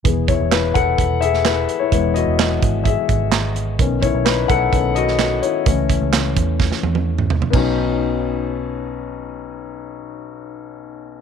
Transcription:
<<
  \new Staff \with { instrumentName = "Grand piano" } { \time 4/4 \key b \mixolydian \tempo 4 = 128 r8 <e' cis''>8 <e' b'>8 <a' fis''>4 <gis' e''>8 <e' b'>8. <e' cis''>16~ | <e' cis''>8 <fis' dis''>4. <gis' e''>4. r8 | r8 <e' cis''>8 <dis' b'>8 <a' fis''>4 <fis' dis''>4 <e' cis''>8~ | <e' cis''>4. r2 r8 |
<b cis' dis' fis'>1~ | <b cis' dis' fis'>1 | }
  \new Staff \with { instrumentName = "Grand piano" } { \time 4/4 \key b \mixolydian <e b gis'>1 | <e gis b>8 r2. r8 | <dis b cis'>2 <dis b cis'>8 r4. | <e a cis'>4. r2 r8 |
b,,1~ | b,,1 | }
  \new Staff \with { instrumentName = "Fingered electric bass" } { \clef bass \time 4/4 \key b \mixolydian e,,8. e,,8. e,,8 e,,4. r8 | e,,8. e,,8. gis,,8. r16 gis,,4. | b,,8. b,,8. b,,8 b,,4. r8 | cis,8. cis,8. e,8. r16 e,4. |
b,,1~ | b,,1 | }
  \new DrumStaff \with { instrumentName = "Drums" } \drummode { \time 4/4 <hh bd>8 <hh bd>8 <hc hh sn>8 <hh bd>8 <hh bd>8 hh16 sn16 <hc hh sn>8 hh8 | <hh bd>8 hh8 <hc hh sn>8 <hh bd>8 <hh bd>8 <hh bd>8 <hc hh sn>8 hh8 | <hh bd>8 <hh bd>8 <hc hh sn>8 <hh bd>8 <hh bd>8 hh16 sn16 <hc hh sn>8 hh8 | <hh bd>8 <hh bd>8 <hc hh sn>8 <hh bd>8 <bd sn>16 sn16 tommh16 tommh16 r16 toml16 tomfh16 tomfh16 |
<cymc bd>4 r4 r4 r4 | r4 r4 r4 r4 | }
>>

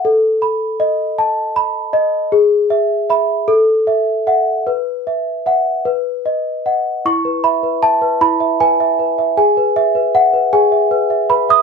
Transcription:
\new Staff \with { instrumentName = "Celesta" } { \time 6/8 \key e \major \tempo 4. = 52 << { r2. | r2. | r2. | cis'''8 b''8 a''8 b''8 gis''4 |
gis''8 e''8 fis''8 gis''4 b''16 dis'''16 | } \\ { a'8 b''8 dis''8 a''8 b''8 dis''8 | gis'8 e''8 <e'' b''>8 a'8 e''8 <e'' fis''>8 | b'8 e''8 <e'' fis''>8 b'8 dis''8 <dis'' fis''>8 | e'16 b'16 e''16 b'16 e''16 b'16 e'16 e''16 b'16 e''16 b'16 e''16 |
gis'16 b'8 b'16 e''16 b'16 gis'16 e''16 b'16 e''16 b'16 e''16 | } >> }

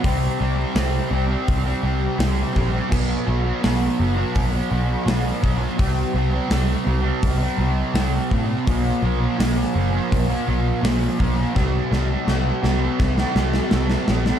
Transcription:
<<
  \new Staff \with { instrumentName = "Distorted electric guitar" } { \clef bass \time 4/4 \key c \lydian \tempo 4 = 83 <c g c'>8 <c g c'>16 <g c'>16 <c g c'>8 <c g c'>16 <g c'>8 <g c'>16 <c g c'>8 <c g c'>8 <c g c'>16 <g c'>16 | <b, fis b>8 <b, fis b>16 <fis b>16 <b, fis b>8 <b, fis b>16 <fis b>8 <fis b>16 <b, fis b>8 <b, fis b>8 <b, fis b>16 <fis b>16 | <c g c'>8 <c g c'>16 <g c'>16 <c g c'>8 <c g c'>16 <g c'>8 <g c'>16 <c g c'>8 <c g c'>8 <c g c'>16 <g c'>16 | <b, fis b>8 <b, fis b>16 <fis b>16 <b, fis b>8 <b, fis b>16 <fis b>8 <fis b>16 <b, fis b>8 <b, fis b>8 <b, fis b>16 <fis b>16 |
<c g c'>8 <c g c'>16 <g c'>16 <c g c'>8 <c g c'>16 <g c'>8 <g c'>16 <c g c'>8 <c g c'>8 <c g c'>16 <g c'>16 | }
  \new Staff \with { instrumentName = "Picked electric bass" } { \clef bass \time 4/4 \key c \lydian c,8 c,8 c,8 c,8 c,8 c,8 c,8 bes,,8 | b,,8 b,,8 b,,8 fis,,8 b,,8 b,,8 b,,8 b,,8 | c,8 c,8 c,8 c,8 c,8 c,8 c,8 a,8 | b,,8 b,,8 b,,8 fis,,8 b,,8 b,,8 b,,8 b,,8 |
c,8 c,8 c,8 c,8 c,8 c,8 c,8 bes,,8 | }
  \new DrumStaff \with { instrumentName = "Drums" } \drummode { \time 4/4 <hho bd>4 <hho sn>4 <hho bd>4 <hho sn>8 bd8 | <cymc bd>4 <hho sn>4 <hho bd>4 <hho sn>8 bd8 | <hho bd>4 <hho sn>4 <hho bd>4 <hho sn>8 bd8 | <hho bd>4 <hho sn>4 <hho bd>4 <hho sn>8 bd8 |
<bd sn>8 sn8 sn8 sn8 <bd sn>16 sn16 sn16 sn16 sn16 sn16 sn16 sn16 | }
>>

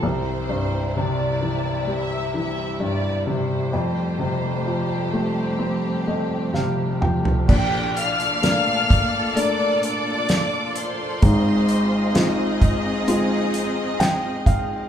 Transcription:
<<
  \new Staff \with { instrumentName = "Violin section" } { \time 4/4 \key bes \major \tempo 4 = 65 c''4 d''4 e''8 e''8 d''8 c''8~ | c''2.~ c''8 r8 | <g' g''>8 <f'' f'''>4. <d'' d'''>8 <d'' d'''>4 <c'' c'''>8~ | <c'' c'''>4. r2 r8 | }
  \new Staff \with { instrumentName = "String section" } { \time 4/4 \key bes \major << { <c' e'>1 | <f c' g'>1 | <bes, d' a' d''>1 | <c' ees' aes' ees''>1 | } \\ { g1 | a1 | f'1~ | f'1 | } >> }
  \new Staff \with { instrumentName = "Felt piano" } { \clef bass \time 4/4 \key bes \major c,8 g,8 c8 e8 g8 e8 g,8 c8 | f,8 c8 f8 a8 c'8 <a ees''>8 <c f''>8 <f g''>8 | <bes,, bes,>4 <a bes d'>4 <a bes d'>4 r4 | <aes,, aes,>4 <aes c' f'>4 <aes c' f'>4 g''8 f''8 | }
  \new DrumStaff \with { instrumentName = "Drums" } \drummode { \time 4/4 r4 r4 r4 r4 | r4 r4 r4 sn8 toml16 tomfh16 | <cymc bd>8 hh16 hh16 <hh sn>8 <hh bd>8 hh8 hh8 <hh sn>8 hh8 | <hh bd>8 hh8 <hh sn>8 <hh bd>8 hh8 hh8 <hh sn>8 <hh bd>8 | }
>>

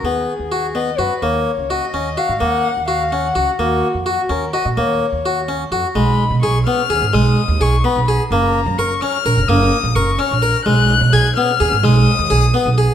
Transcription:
<<
  \new Staff \with { instrumentName = "Violin" } { \time 5/8 \key ces \lydian \tempo 4 = 127 aes'4. ees''8 ces''8 | des''4 ees''4 f''8 | ges''4 f''8 ges''8. r16 | ges'4 ges'8 bes'8 ees''8 |
des''4. r4 | b''4 des'''8 f'''4 | dis'''4 des'''8 b''8. r16 | bes''4 des'''8 f'''4 |
ees'''4 des'''8 f'''4 | fis'''4 gis'''8 f'''4 | dis'''2 r8 | }
  \new Staff \with { instrumentName = "Harpsichord" } { \time 5/8 \key ces \lydian ces'4 ges'8 ces'8 ges'8 | bes4 ges'8 des'8 ges'8 | bes4 ges'8 des'8 ges'8 | bes4 ges'8 des'8 ges'8 |
bes4 ges'8 des'8 ges'8 | gis4 gis'8 b8 gis'8 | gis4 gis'8 b8 gis'8 | bes4 bes'8 des'8 bes'8 |
bes4 bes'8 des'8 bes'8 | gis4 gis'8 b8 gis'8 | gis4 gis'8 b8 gis'8 | }
  \new Staff \with { instrumentName = "Upright bass" } { \clef bass \time 5/8 \key ces \lydian ees,8 r16 ees,4~ ees,16 ges,16 r16 | ees,8 r16 des,8 r16 ees,8 r16 aes,16 | ees,8 r16 ees,4~ ees,16 des,16 r16 | ees,8 r16 f,8 r16 ees,8 r16 bes,16 |
ees,8 r16 ees,4~ ees,16 f,16 r16 | b,,8. b,16 b,,8 r8 dis,16 gis,,16 | b,,8 r16 dis,16 b,,8 r16 b,,8 r16 | ges,,8. ges,16 ges,,8 r8 bes,,16 f,,16 |
ges,,8 r16 bes,,16 ges,,8 r16 bes,,8 r16 | b,,8. b,16 b,,8 r8 dis,16 gis,,16 | b,,8 r16 dis,16 b,,8 r16 b,,8 r16 | }
>>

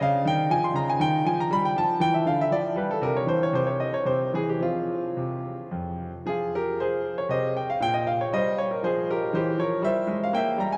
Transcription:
<<
  \new Staff \with { instrumentName = "Grand piano" } { \time 3/4 \key f \minor \tempo 4 = 118 f''8 g''8 aes''16 c'''16 bes''16 aes''16 g''8 aes''16 bes''16 | b''16 g''16 a''8 g''16 e''16 f''16 e''16 d''8 b'16 a'16 | bes'16 des''16 c''16 des''16 c''16 des''16 ees''16 des''16 c''8 aes'16 g'16 | f'2~ f'8 r8 |
<f' aes'>8 <g' bes'>8 <aes' c''>8. des''16 <c'' ees''>8 g''16 f''16 | g''16 ees''16 f''16 des''16 <c'' ees''>8 des''16 bes'16 <aes' c''>8 <g' bes'>8 | <g' c''>8 <bes' des''>8 <c'' e''>8. f''16 <e'' g''>8 bes''16 aes''16 | }
  \new Staff \with { instrumentName = "Grand piano" } { \clef bass \time 3/4 \key f \minor des8 ees8 f8 des8 ees8 f8 | g8 f8 e8 d8 f8 g8 | c8 e8 c4 c8 e8 | <f c'>4 c4 f,4 |
f2 c4 | bes,4 g4 f4 | e8 f8 g8 aes8 bes8 g8 | }
>>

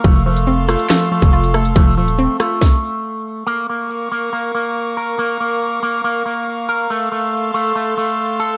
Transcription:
<<
  \new Staff \with { instrumentName = "Analog synth pad" } { \time 4/4 \key bes \minor \tempo 4 = 140 << { <a' c'''>1~ | <a' c'''>2 r2 | <bes' des'''>1~ | <bes' des'''>1 |
<a' c'''>1 | } \\ { f''1~ | f''2 r2 | f''1~ | f''1~ |
f''1 | } >> }
  \new Staff \with { instrumentName = "Clean electric guitar" } { \time 4/4 \key bes \minor a8 a4 a8 a8 a4 a'8 | a8 a4 a2~ a8 | bes8 bes4 bes8 bes8 bes4 bes'8 | bes8 bes4 bes8 bes8 bes4 bes'8 |
a8 a4 a8 a8 a4 a'8 | }
  \new Staff \with { instrumentName = "Synth pluck" } { \clef bass \time 4/4 \key bes \minor f8 f8 c'8 f'8 f8 f8 f'8 a8 | f8 f8 c'8 f'2~ f'8 | r1 | r1 |
r1 | }
  \new Staff \with { instrumentName = "808-style bass" } { \clef bass \time 4/4 \key bes \minor f,,4.~ f,,16 r4 f,,4~ f,,16 | f,,8 ees,,8. r2 r8. | r1 | r1 |
r1 | }
  \new DrumStaff \with { instrumentName = "Drums" } \drummode { \time 4/4 <hh bd>8. hh16 r8 <hh ss>16 hh16 <hc sn>8. <hh bd>16 r16 hh16 ss16 hh16 | <hh bd>8. hh16 r8 <hh ss>8 <bd sn>4 r4 | r4 r4 r4 r4 | r4 r4 r4 r4 |
r4 r4 r4 r4 | }
>>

